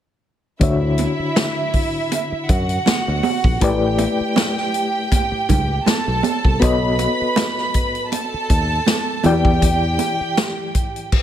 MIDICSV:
0, 0, Header, 1, 6, 480
1, 0, Start_track
1, 0, Key_signature, 2, "major"
1, 0, Tempo, 750939
1, 391, Time_signature, 4, 2, 24, 8
1, 7174, End_track
2, 0, Start_track
2, 0, Title_t, "Violin section"
2, 0, Program_c, 0, 48
2, 395, Note_on_c, 0, 64, 75
2, 396, Note_on_c, 0, 76, 77
2, 1569, Note_off_c, 0, 64, 0
2, 1570, Note_off_c, 0, 76, 0
2, 1587, Note_on_c, 0, 66, 67
2, 1587, Note_on_c, 0, 78, 77
2, 2295, Note_off_c, 0, 66, 0
2, 2295, Note_off_c, 0, 78, 0
2, 2308, Note_on_c, 0, 79, 82
2, 2309, Note_on_c, 0, 67, 74
2, 3724, Note_off_c, 0, 79, 0
2, 3725, Note_off_c, 0, 67, 0
2, 3754, Note_on_c, 0, 69, 74
2, 3754, Note_on_c, 0, 81, 80
2, 4223, Note_off_c, 0, 81, 0
2, 4224, Note_off_c, 0, 69, 0
2, 4229, Note_on_c, 0, 71, 68
2, 4231, Note_on_c, 0, 83, 78
2, 5171, Note_off_c, 0, 71, 0
2, 5172, Note_off_c, 0, 83, 0
2, 5199, Note_on_c, 0, 81, 81
2, 5200, Note_on_c, 0, 69, 72
2, 5901, Note_off_c, 0, 81, 0
2, 5902, Note_off_c, 0, 69, 0
2, 5922, Note_on_c, 0, 79, 80
2, 5923, Note_on_c, 0, 67, 72
2, 7092, Note_off_c, 0, 79, 0
2, 7093, Note_off_c, 0, 67, 0
2, 7174, End_track
3, 0, Start_track
3, 0, Title_t, "Reed electric piano"
3, 0, Program_c, 1, 4
3, 381, Note_on_c, 1, 50, 63
3, 386, Note_on_c, 1, 62, 61
3, 394, Note_on_c, 1, 66, 55
3, 399, Note_on_c, 1, 73, 60
3, 405, Note_on_c, 1, 76, 67
3, 492, Control_c, 1, 64, 127
3, 2281, Note_off_c, 1, 50, 0
3, 2284, Note_off_c, 1, 62, 0
3, 2288, Note_off_c, 1, 66, 0
3, 2290, Note_off_c, 1, 73, 0
3, 2293, Note_off_c, 1, 76, 0
3, 2306, Note_on_c, 1, 57, 68
3, 2313, Note_on_c, 1, 64, 59
3, 2315, Note_on_c, 1, 67, 61
3, 2320, Control_c, 1, 64, 0
3, 2321, Note_on_c, 1, 71, 60
3, 2327, Note_on_c, 1, 74, 76
3, 2437, Control_c, 1, 64, 127
3, 4203, Note_off_c, 1, 57, 0
3, 4207, Note_off_c, 1, 64, 0
3, 4208, Note_off_c, 1, 67, 0
3, 4211, Note_off_c, 1, 71, 0
3, 4214, Note_off_c, 1, 74, 0
3, 4216, Note_on_c, 1, 59, 69
3, 4222, Note_on_c, 1, 66, 60
3, 4228, Note_on_c, 1, 69, 56
3, 4233, Note_on_c, 1, 73, 59
3, 4241, Control_c, 1, 64, 0
3, 4241, Note_on_c, 1, 75, 73
3, 4341, Control_c, 1, 64, 127
3, 5878, Note_off_c, 1, 59, 0
3, 5881, Note_off_c, 1, 66, 0
3, 5884, Note_off_c, 1, 69, 0
3, 5887, Note_off_c, 1, 73, 0
3, 5891, Note_off_c, 1, 75, 0
3, 5901, Note_on_c, 1, 52, 66
3, 5905, Note_on_c, 1, 64, 60
3, 5913, Note_on_c, 1, 66, 50
3, 5918, Note_on_c, 1, 74, 60
3, 5921, Note_on_c, 1, 79, 75
3, 5922, Control_c, 1, 64, 0
3, 5956, Note_on_c, 1, 67, 63
3, 5958, Note_off_c, 1, 66, 0
3, 6023, Control_c, 1, 64, 127
3, 7082, Note_off_c, 1, 52, 0
3, 7084, Note_off_c, 1, 64, 0
3, 7091, Note_off_c, 1, 74, 0
3, 7092, Note_off_c, 1, 79, 0
3, 7110, Note_off_c, 1, 67, 0
3, 7120, Control_c, 1, 64, 0
3, 7174, End_track
4, 0, Start_track
4, 0, Title_t, "Fingered electric bass"
4, 0, Program_c, 2, 33
4, 389, Note_on_c, 2, 38, 89
4, 669, Note_off_c, 2, 38, 0
4, 1593, Note_on_c, 2, 42, 75
4, 1774, Note_off_c, 2, 42, 0
4, 1969, Note_on_c, 2, 38, 66
4, 2049, Note_off_c, 2, 38, 0
4, 2199, Note_on_c, 2, 34, 74
4, 2283, Note_off_c, 2, 34, 0
4, 2310, Note_on_c, 2, 33, 97
4, 2589, Note_off_c, 2, 33, 0
4, 3515, Note_on_c, 2, 37, 79
4, 3695, Note_off_c, 2, 37, 0
4, 3884, Note_on_c, 2, 35, 73
4, 3966, Note_off_c, 2, 35, 0
4, 4121, Note_on_c, 2, 36, 71
4, 4204, Note_off_c, 2, 36, 0
4, 4231, Note_on_c, 2, 35, 91
4, 4510, Note_off_c, 2, 35, 0
4, 5434, Note_on_c, 2, 39, 81
4, 5614, Note_off_c, 2, 39, 0
4, 5912, Note_on_c, 2, 40, 89
4, 6372, Note_off_c, 2, 40, 0
4, 7174, End_track
5, 0, Start_track
5, 0, Title_t, "Muted fingered electric bass strokes"
5, 762, Note_on_c, 9, 29, 39
5, 826, Note_off_c, 9, 29, 0
5, 1484, Note_on_c, 9, 29, 43
5, 1547, Note_off_c, 9, 29, 0
5, 1837, Note_on_c, 9, 29, 43
5, 1901, Note_off_c, 9, 29, 0
5, 2687, Note_on_c, 9, 29, 42
5, 2751, Note_off_c, 9, 29, 0
5, 3399, Note_on_c, 9, 29, 41
5, 3463, Note_off_c, 9, 29, 0
5, 3751, Note_on_c, 9, 29, 45
5, 3814, Note_off_c, 9, 29, 0
5, 4611, Note_on_c, 9, 29, 40
5, 4675, Note_off_c, 9, 29, 0
5, 5331, Note_on_c, 9, 29, 45
5, 5395, Note_off_c, 9, 29, 0
5, 6523, Note_on_c, 9, 29, 41
5, 6587, Note_off_c, 9, 29, 0
5, 7174, End_track
6, 0, Start_track
6, 0, Title_t, "Drums"
6, 389, Note_on_c, 9, 36, 92
6, 389, Note_on_c, 9, 42, 77
6, 394, Note_on_c, 9, 62, 26
6, 452, Note_off_c, 9, 42, 0
6, 453, Note_off_c, 9, 36, 0
6, 458, Note_off_c, 9, 62, 0
6, 625, Note_on_c, 9, 42, 66
6, 634, Note_on_c, 9, 62, 43
6, 689, Note_off_c, 9, 42, 0
6, 697, Note_off_c, 9, 62, 0
6, 871, Note_on_c, 9, 63, 66
6, 872, Note_on_c, 9, 38, 114
6, 874, Note_on_c, 9, 42, 97
6, 935, Note_off_c, 9, 63, 0
6, 936, Note_off_c, 9, 38, 0
6, 938, Note_off_c, 9, 42, 0
6, 1108, Note_on_c, 9, 46, 48
6, 1111, Note_on_c, 9, 36, 76
6, 1172, Note_off_c, 9, 46, 0
6, 1175, Note_off_c, 9, 36, 0
6, 1353, Note_on_c, 9, 42, 78
6, 1353, Note_on_c, 9, 62, 47
6, 1417, Note_off_c, 9, 42, 0
6, 1417, Note_off_c, 9, 62, 0
6, 1591, Note_on_c, 9, 42, 62
6, 1593, Note_on_c, 9, 36, 84
6, 1655, Note_off_c, 9, 42, 0
6, 1656, Note_off_c, 9, 36, 0
6, 1720, Note_on_c, 9, 42, 42
6, 1783, Note_off_c, 9, 42, 0
6, 1828, Note_on_c, 9, 63, 64
6, 1835, Note_on_c, 9, 38, 105
6, 1836, Note_on_c, 9, 42, 89
6, 1892, Note_off_c, 9, 63, 0
6, 1899, Note_off_c, 9, 38, 0
6, 1900, Note_off_c, 9, 42, 0
6, 2067, Note_on_c, 9, 63, 70
6, 2071, Note_on_c, 9, 46, 41
6, 2131, Note_off_c, 9, 63, 0
6, 2135, Note_off_c, 9, 46, 0
6, 2200, Note_on_c, 9, 36, 90
6, 2264, Note_off_c, 9, 36, 0
6, 2308, Note_on_c, 9, 42, 87
6, 2311, Note_on_c, 9, 36, 99
6, 2313, Note_on_c, 9, 62, 27
6, 2372, Note_off_c, 9, 42, 0
6, 2374, Note_off_c, 9, 36, 0
6, 2377, Note_off_c, 9, 62, 0
6, 2547, Note_on_c, 9, 62, 48
6, 2548, Note_on_c, 9, 42, 63
6, 2611, Note_off_c, 9, 62, 0
6, 2612, Note_off_c, 9, 42, 0
6, 2787, Note_on_c, 9, 63, 68
6, 2795, Note_on_c, 9, 38, 108
6, 2797, Note_on_c, 9, 42, 95
6, 2851, Note_off_c, 9, 63, 0
6, 2859, Note_off_c, 9, 38, 0
6, 2861, Note_off_c, 9, 42, 0
6, 2923, Note_on_c, 9, 38, 28
6, 2987, Note_off_c, 9, 38, 0
6, 3030, Note_on_c, 9, 42, 65
6, 3094, Note_off_c, 9, 42, 0
6, 3271, Note_on_c, 9, 36, 81
6, 3271, Note_on_c, 9, 62, 46
6, 3273, Note_on_c, 9, 42, 80
6, 3335, Note_off_c, 9, 36, 0
6, 3335, Note_off_c, 9, 62, 0
6, 3337, Note_off_c, 9, 42, 0
6, 3508, Note_on_c, 9, 64, 60
6, 3512, Note_on_c, 9, 42, 59
6, 3513, Note_on_c, 9, 36, 82
6, 3572, Note_off_c, 9, 64, 0
6, 3575, Note_off_c, 9, 42, 0
6, 3577, Note_off_c, 9, 36, 0
6, 3747, Note_on_c, 9, 63, 66
6, 3754, Note_on_c, 9, 38, 104
6, 3755, Note_on_c, 9, 42, 90
6, 3811, Note_off_c, 9, 63, 0
6, 3818, Note_off_c, 9, 38, 0
6, 3819, Note_off_c, 9, 42, 0
6, 3983, Note_on_c, 9, 63, 69
6, 3990, Note_on_c, 9, 42, 58
6, 4047, Note_off_c, 9, 63, 0
6, 4054, Note_off_c, 9, 42, 0
6, 4120, Note_on_c, 9, 36, 87
6, 4184, Note_off_c, 9, 36, 0
6, 4228, Note_on_c, 9, 62, 28
6, 4230, Note_on_c, 9, 42, 81
6, 4232, Note_on_c, 9, 36, 97
6, 4292, Note_off_c, 9, 62, 0
6, 4294, Note_off_c, 9, 42, 0
6, 4295, Note_off_c, 9, 36, 0
6, 4467, Note_on_c, 9, 62, 44
6, 4468, Note_on_c, 9, 42, 68
6, 4531, Note_off_c, 9, 62, 0
6, 4532, Note_off_c, 9, 42, 0
6, 4705, Note_on_c, 9, 63, 67
6, 4711, Note_on_c, 9, 38, 111
6, 4713, Note_on_c, 9, 42, 103
6, 4769, Note_off_c, 9, 63, 0
6, 4775, Note_off_c, 9, 38, 0
6, 4777, Note_off_c, 9, 42, 0
6, 4843, Note_on_c, 9, 38, 28
6, 4907, Note_off_c, 9, 38, 0
6, 4947, Note_on_c, 9, 42, 65
6, 4951, Note_on_c, 9, 36, 78
6, 5011, Note_off_c, 9, 42, 0
6, 5015, Note_off_c, 9, 36, 0
6, 5080, Note_on_c, 9, 42, 42
6, 5144, Note_off_c, 9, 42, 0
6, 5190, Note_on_c, 9, 62, 44
6, 5193, Note_on_c, 9, 42, 85
6, 5254, Note_off_c, 9, 62, 0
6, 5257, Note_off_c, 9, 42, 0
6, 5431, Note_on_c, 9, 42, 58
6, 5432, Note_on_c, 9, 36, 83
6, 5495, Note_off_c, 9, 42, 0
6, 5496, Note_off_c, 9, 36, 0
6, 5666, Note_on_c, 9, 63, 65
6, 5672, Note_on_c, 9, 38, 102
6, 5673, Note_on_c, 9, 42, 88
6, 5730, Note_off_c, 9, 63, 0
6, 5736, Note_off_c, 9, 38, 0
6, 5737, Note_off_c, 9, 42, 0
6, 5903, Note_on_c, 9, 63, 68
6, 5906, Note_on_c, 9, 42, 55
6, 5967, Note_off_c, 9, 63, 0
6, 5970, Note_off_c, 9, 42, 0
6, 6039, Note_on_c, 9, 36, 86
6, 6103, Note_off_c, 9, 36, 0
6, 6150, Note_on_c, 9, 36, 90
6, 6150, Note_on_c, 9, 42, 81
6, 6150, Note_on_c, 9, 62, 27
6, 6214, Note_off_c, 9, 36, 0
6, 6214, Note_off_c, 9, 42, 0
6, 6214, Note_off_c, 9, 62, 0
6, 6384, Note_on_c, 9, 42, 66
6, 6385, Note_on_c, 9, 62, 47
6, 6448, Note_off_c, 9, 42, 0
6, 6449, Note_off_c, 9, 62, 0
6, 6632, Note_on_c, 9, 38, 108
6, 6632, Note_on_c, 9, 63, 65
6, 6634, Note_on_c, 9, 42, 104
6, 6695, Note_off_c, 9, 63, 0
6, 6696, Note_off_c, 9, 38, 0
6, 6698, Note_off_c, 9, 42, 0
6, 6869, Note_on_c, 9, 42, 62
6, 6871, Note_on_c, 9, 36, 81
6, 6933, Note_off_c, 9, 42, 0
6, 6934, Note_off_c, 9, 36, 0
6, 7005, Note_on_c, 9, 42, 42
6, 7069, Note_off_c, 9, 42, 0
6, 7110, Note_on_c, 9, 36, 96
6, 7110, Note_on_c, 9, 49, 78
6, 7174, Note_off_c, 9, 36, 0
6, 7174, Note_off_c, 9, 49, 0
6, 7174, End_track
0, 0, End_of_file